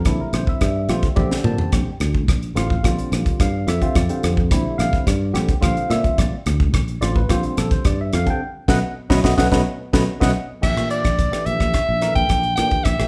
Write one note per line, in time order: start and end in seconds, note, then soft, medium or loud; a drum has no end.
0.05 0.18 A#1 medium
0.05 0.60 D3 medium
0.05 0.60 G3 medium
0.05 0.61 C4 medium
0.05 0.61 E4 medium
0.05 0.20 A4 medium
0.05 kick loud
0.05 cross-stick medium
0.05 closed hi-hat medium
0.21 0.34 A#4 medium
0.33 0.46 A#1 medium
0.33 0.47 C5 medium
0.33 cross-stick medium
0.33 closed hi-hat medium
0.47 1.28 E5 medium
0.47 muted fretless electric bass stroke soft
0.47 kick medium
0.61 0.90 G2 loud
0.61 kick medium
0.61 cross-stick medium
0.61 closed hi-hat medium
0.89 1.02 A#1 medium
0.89 1.07 D3 medium
0.89 1.07 G3 medium
0.89 1.07 C4 medium
0.89 1.08 F4 medium
0.89 cross-stick medium
0.89 closed hi-hat medium
1.03 kick medium
1.03 closed hi-hat soft
1.16 1.30 A#1 medium
1.16 1.89 D3 medium
1.16 1.89 G3 medium
1.16 1.89 C4 medium
1.16 1.90 G4 medium
1.16 1.42 D5 medium
1.16 kick loud
1.16 high tom medium
1.31 snare medium
1.44 1.57 A#2 medium
1.44 1.71 A5 medium
1.44 mid tom medium
1.58 muted fretless electric bass stroke soft
1.58 floor tom medium
1.72 1.85 A#1 medium
1.72 kick medium
1.72 cross-stick medium
1.72 closed hi-hat medium
1.87 muted fretless electric bass stroke soft
2.00 2.28 D2 medium
2.00 cross-stick medium
2.00 closed hi-hat medium
2.15 kick medium
2.28 2.54 A#1 loud
2.28 kick loud
2.28 cross-stick medium
2.28 closed hi-hat medium
2.42 closed hi-hat soft
2.55 2.81 A1 medium
2.55 2.74 D3 medium
2.55 2.74 G3 medium
2.55 2.74 C4 medium
2.55 2.74 F4 medium
2.55 2.84 F5 medium
2.55 cross-stick medium
2.55 closed hi-hat medium
2.70 kick medium
2.83 2.97 A#1 medium
2.83 3.47 D3 medium
2.83 3.48 G3 medium
2.83 3.48 C4 medium
2.83 3.48 F4 medium
2.83 3.37 D5 medium
2.83 kick medium
2.83 cross-stick medium
2.83 closed hi-hat medium
2.99 closed hi-hat soft
3.12 3.24 A#1 medium
3.12 cross-stick medium
3.12 closed hi-hat medium
3.26 kick medium
3.26 closed hi-hat soft
3.40 3.65 G2 medium
3.40 3.67 F5 medium
3.40 kick loud
3.40 cross-stick medium
3.40 closed hi-hat medium
3.67 3.80 F2 medium
3.67 3.95 E5 medium
3.67 cross-stick medium
3.67 closed hi-hat medium
3.81 3.99 D3 medium
3.81 4.00 G3 medium
3.81 4.00 C4 medium
3.81 4.00 F4 medium
3.81 kick medium
3.81 closed hi-hat soft
3.95 4.08 F2 loud
3.95 4.23 D5 medium
3.95 kick medium
3.95 cross-stick medium
3.95 closed hi-hat medium
4.09 4.36 D3 medium
4.09 4.37 G3 medium
4.09 4.37 C4 medium
4.09 4.37 F4 medium
4.09 closed hi-hat soft
4.23 4.49 F2 loud
4.23 cross-stick medium
4.23 closed hi-hat medium
4.37 kick medium
4.51 4.64 A#1 medium
4.51 5.06 D3 medium
4.51 5.06 G3 medium
4.51 5.06 C4 medium
4.51 5.06 E4 medium
4.51 kick loud
4.51 cross-stick medium
4.51 closed hi-hat medium
4.78 4.91 A#1 medium
4.78 5.05 F5 medium
4.78 cross-stick medium
4.78 closed hi-hat medium
4.93 muted fretless electric bass stroke soft
4.93 kick medium
5.07 5.36 G2 medium
5.07 5.59 D5 medium
5.07 kick medium
5.07 cross-stick medium
5.07 closed hi-hat medium
5.33 5.47 A#1 medium
5.33 5.52 D3 medium
5.33 5.52 G3 medium
5.33 5.52 C4 medium
5.33 5.52 G4 medium
5.33 cross-stick medium
5.33 closed hi-hat medium
5.48 kick medium
5.48 closed hi-hat soft
5.61 5.75 A#1 loud
5.61 6.34 D3 medium
5.61 6.35 G3 medium
5.61 6.35 C4 medium
5.61 6.35 F4 medium
5.61 5.89 F5 medium
5.61 kick loud
5.61 cross-stick medium
5.61 closed hi-hat medium
5.77 closed hi-hat soft
5.90 6.03 A#2 medium
5.90 6.17 E5 medium
5.90 cross-stick medium
5.90 closed hi-hat medium
6.04 muted fretless electric bass stroke soft
6.04 kick medium
6.04 closed hi-hat soft
6.18 6.31 A#1 medium
6.18 6.35 D5 medium
6.18 kick medium
6.18 cross-stick medium
6.18 closed hi-hat medium
6.32 muted fretless electric bass stroke soft
6.46 6.74 D2 medium
6.46 cross-stick medium
6.46 closed hi-hat medium
6.60 kick medium
6.74 6.99 A#1 loud
6.74 kick loud
6.74 cross-stick medium
6.74 closed hi-hat medium
6.88 closed hi-hat soft
7.01 7.27 A1 medium
7.01 7.19 D3 medium
7.01 7.19 G3 medium
7.01 7.19 C4 medium
7.01 7.20 F4 medium
7.01 7.15 D5 medium
7.01 cross-stick medium
7.01 closed hi-hat medium
7.16 7.29 B4 medium
7.16 kick medium
7.29 7.42 A#1 medium
7.29 7.93 D3 medium
7.29 7.93 G3 medium
7.29 7.93 C4 medium
7.29 7.44 F4 medium
7.29 7.44 C5 medium
7.29 kick medium
7.29 cross-stick medium
7.29 closed hi-hat medium
7.43 closed hi-hat soft
7.57 7.70 A#1 medium
7.57 7.71 A4 medium
7.57 cross-stick medium
7.57 closed hi-hat medium
7.71 7.85 C5 medium
7.71 kick medium
7.71 closed hi-hat soft
7.85 8.10 G2 medium
7.85 7.99 D5 medium
7.85 kick loud
7.85 cross-stick medium
7.85 closed hi-hat medium
8.01 8.13 E5 medium
8.13 8.26 F2 medium
8.13 8.27 F5 medium
8.13 cross-stick medium
8.13 closed hi-hat medium
8.26 8.40 D3 medium
8.26 8.40 G3 medium
8.26 8.40 C4 medium
8.26 8.40 D4 medium
8.26 kick medium
8.26 closed hi-hat soft
8.30 8.42 G5 medium
8.68 8.79 B1 loud
8.68 8.77 F#3 loud
8.68 8.77 A3 medium
8.68 8.77 B3 medium
8.68 8.78 B4 loud
8.68 8.78 D#5 medium
8.68 8.78 F#5 medium
8.68 kick medium
8.68 snare medium
9.10 9.20 B1 medium
9.10 9.19 F#3 loud
9.10 9.19 A3 loud
9.10 9.19 B3 loud
9.10 9.19 B4 loud
9.10 9.19 D#5 medium
9.10 9.19 F#5 medium
9.10 kick medium
9.10 snare medium
9.23 9.34 B1 medium
9.23 9.32 F#3 medium
9.23 9.33 A3 medium
9.23 9.33 B3 medium
9.23 9.33 B4 medium
9.23 9.33 D#5 medium
9.23 9.33 F#5 medium
9.23 kick medium
9.23 snare medium
9.37 9.48 B1 loud
9.37 9.47 F#3 loud
9.37 9.47 A3 loud
9.37 9.46 B3 loud
9.37 9.47 B4 medium
9.37 9.47 D#5 medium
9.37 9.47 F#5 medium
9.37 kick medium
9.37 snare medium
9.51 9.62 B1 medium
9.51 9.61 F#3 medium
9.51 9.60 A3 loud
9.51 9.60 B3 medium
9.51 9.61 B4 medium
9.51 9.61 D#5 medium
9.51 9.61 F#5 medium
9.51 kick loud
9.51 snare medium
9.93 10.04 B1 loud
9.93 10.02 F#3 medium
9.93 10.02 A3 loud
9.93 10.02 B3 loud
9.93 10.03 B4 loud
9.93 10.02 D#5 medium
9.93 10.02 F#5 medium
9.93 kick medium
9.93 snare loud
10.20 10.32 B1 loud
10.20 10.30 F#3 medium
10.20 10.30 A3 medium
10.20 10.29 B3 loud
10.20 10.30 B4 medium
10.20 10.30 D#5 medium
10.20 10.31 F#5 medium
10.20 kick medium
10.20 snare medium
10.61 10.76 A#1 medium
10.61 11.08 E3 medium
10.61 11.08 A3 medium
10.61 11.08 D4 medium
10.61 11.08 G4 medium
10.61 10.89 E5 medium
10.61 kick medium
10.61 cross-stick medium
10.61 crash medium
10.77 11.02 A#2 medium
10.77 cross-stick medium
10.90 11.47 D5 medium
10.90 closed hi-hat soft
11.04 11.30 A#1 medium
11.04 kick medium
11.04 cross-stick medium
11.04 closed hi-hat soft
11.19 kick loud
11.19 closed hi-hat medium
11.31 11.78 E3 medium
11.31 11.78 A3 medium
11.31 11.78 D4 medium
11.31 11.78 G4 medium
11.31 muted fretless electric bass stroke soft
11.31 cross-stick medium
11.46 11.59 A#1 medium
11.46 12.14 E5 loud
11.46 closed hi-hat soft
11.60 11.73 A#1 medium
11.60 kick medium
11.60 cross-stick medium
11.74 kick medium
11.74 cross-stick medium
11.74 closed hi-hat medium
11.89 12.14 A#1 medium
12.01 12.38 E3 medium
12.01 12.39 D4 medium
12.01 12.38 A4 medium
12.01 12.39 A#4 medium
12.01 cross-stick medium
12.01 closed hi-hat medium
12.15 12.29 A#1 medium
12.15 12.54 G5 loud
12.15 kick medium
12.15 closed hi-hat soft
12.29 12.55 A#1 medium
12.29 kick medium
12.29 cross-stick medium
12.29 closed hi-hat medium
12.43 closed hi-hat soft
12.55 12.71 A#2 medium
12.55 12.85 E3 medium
12.55 12.85 A3 medium
12.55 12.85 D4 medium
12.55 12.85 G4 medium
12.55 12.85 G5 loud
12.55 cross-stick medium
12.55 closed hi-hat medium
12.71 muted fretless electric bass stroke soft
12.71 kick medium
12.71 closed hi-hat soft
12.84 12.98 A#1 medium
12.84 13.08 E5 medium
12.84 kick medium
12.84 cross-stick medium
12.84 closed hi-hat medium
12.99 13.08 A#1 medium
12.99 13.08 E3 medium
12.99 13.08 A3 medium
12.99 13.08 D4 medium
12.99 13.08 G4 medium
12.99 cross-stick medium